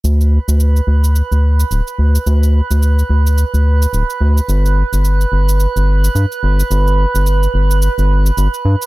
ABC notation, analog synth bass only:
X:1
M:4/4
L:1/16
Q:"Swing 16ths" 1/4=108
K:Bphr
V:1 name="Analog synth bass" clef=bass
D,,2 z D,,2 z D,,2 z D,,2 z D,,, z D,, z | D,,2 z D,,2 z D,,2 z D,,2 z D,,, z D,, z | G,,,2 z G,,,2 z G,,,2 z G,,,2 z G,, z G,,, z | G,,,2 z G,,,2 z G,,,2 z G,,,2 z G,,, z G,, z |]